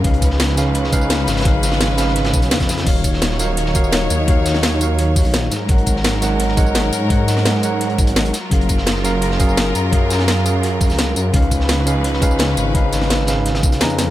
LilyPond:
<<
  \new Staff \with { instrumentName = "Tine electric piano" } { \time 4/4 \key des \mixolydian \tempo 4 = 170 <des des' ees' ces'' f''>4. <des des' ees' ces'' f''>4 <des des' ees' ces'' f''>8 r4 | <des des' ees' ces'' f''>4. <des des' ees' ces'' f''>2~ <des des' ees' ces'' f''>8 | <ees ees' ges' des'' f''>4. <ees ees' ges' des'' f''>4 <ees ees' ges' des'' f''>8 r4 | <ees ees' ges' des'' f''>4. <ees ees' ges' des'' f''>2 r8 |
<aes ees' bes' des'' ges''>4. <aes ees' bes' des'' ges''>4 <aes ees' bes' des'' ges''>8 r4 | <aes ees' bes' des'' ges''>4. <aes ees' bes' des'' ges''>2 r8 | <ges des' aes' bes' f''>4. <ges des' aes' bes' f''>4 <ges des' aes' bes' f''>8 r4 | <ges des' aes' bes' f''>4. <ges des' aes' bes' f''>2~ <ges des' aes' bes' f''>8 |
<des des' ees' ces'' f''>4. <des des' ees' ces'' f''>4 <des des' ees' ces'' f''>8 r4 | <des des' ees' ces'' f''>4. <des des' ees' ces'' f''>4. <des des' ees' ces'' bes''>4 | }
  \new Staff \with { instrumentName = "String section" } { \time 4/4 \key des \mixolydian << { <des' ces''>1~ | <des' ces''>1 | <ees' des''>1~ | <ees' des''>2.~ <ees' des''>8 <des' bes'>8~ |
<des' bes'>1~ | <des' bes'>2.~ <des' bes'>8 <f' bes'>8~ | <f' bes'>1~ | <f' bes'>1 |
<des' ces''>1~ | <des' ces''>1 | } \\ { f1~ | f1 | ges1~ | ges2.~ ges8 ges8~ |
ges1~ | ges1~ | ges1~ | ges1 |
f1~ | f1 | } >> }
  \new Staff \with { instrumentName = "Detuned saw bass" } { \clef bass \time 4/4 \key des \mixolydian des,2.~ des,8 aes,,8~ | aes,,2~ aes,,8 ces,8 f,4 | ees,,2.~ ees,,8 ees,8~ | ees,2~ ees,8. bes,,8. aes,8 |
aes,,2.~ aes,,8 aes,8~ | aes,2~ aes,8 aes,,4 r8 | ges,,2.~ ges,,8 ges,8~ | ges,2~ ges,8. des,8. ges,8 |
des,2.~ des,8 aes,,8~ | aes,,2~ aes,,8 ces,8 f,4 | }
  \new DrumStaff \with { instrumentName = "Drums" } \drummode { \time 4/4 <hh bd>16 hh16 <hh bd tamb>16 sn16 <hh sn>16 sn16 <hh sn tamb>8 hh16 sn16 <hh bd tamb>16 tamb16 <hh sn>8 <hh sn tamb>16 <hh sn>32 <hh sn>32 | <hh bd>8 <hh sn tamb>16 sn16 <hh sn>16 sn16 <hh sn tamb>16 sn16 <hh sn>16 <hh sn>16 <hh bd sn tamb>16 <hh sn tamb>16 <hh sn>16 <hh bd sn tamb>16 <hh sn tamb>16 <hh sn>16 | <cymc hh bd>16 hh16 <hh bd tamb>16 sn16 <hh sn>16 sn16 <hh sn tamb>8 hh16 sn16 <hh bd tamb>16 tamb16 <hh sn>8 <hh tamb>8 | <hh bd>8 <hh sn tamb>16 sn16 <hh sn>16 sn16 <hh tamb>8 hh8 <hh hho bd tamb>16 tamb16 <hh sn>8 <hh sn tamb>8 |
<hh bd>16 hh16 <hh bd tamb>16 sn16 <hh sn>16 sn16 <hh sn tamb>8 hh16 sn16 <hh bd tamb>16 tamb16 <hh sn>8 <hh tamb>8 | <hh bd>8 <hh sn tamb>16 sn16 <hh sn>16 sn16 <hh tamb>8 hh16 hh16 <hh bd tamb>16 <hh tamb>16 <hh sn>16 <hh tamb>16 <hh sn tamb>8 | <hh bd>16 hh16 <hh bd tamb>16 sn16 <hh sn>16 sn16 <hh sn tamb>8 hh16 sn16 <hh bd tamb>16 tamb16 <hh sn>8 <hh tamb>8 | <hh bd>8 <hh sn tamb>16 sn16 <hh sn>16 sn16 <hh tamb>8 hh8 <hh hho bd tamb>16 <sn tamb>16 <hh sn>8 <hh tamb>8 |
<hh bd>8 <hh bd tamb>16 sn16 <hh sn>16 sn16 <hh tamb>8 hh16 sn16 <hh bd tamb>16 tamb16 <hh sn>8 <hh tamb>8 | <hh bd>8 <hh sn tamb>16 sn16 <hh sn>16 sn16 <hh sn tamb>8 <hh sn>16 <hh sn>16 <hh bd tamb>16 <hh sn tamb>16 <hh sn>16 tamb16 <hh sn tamb>8 | }
>>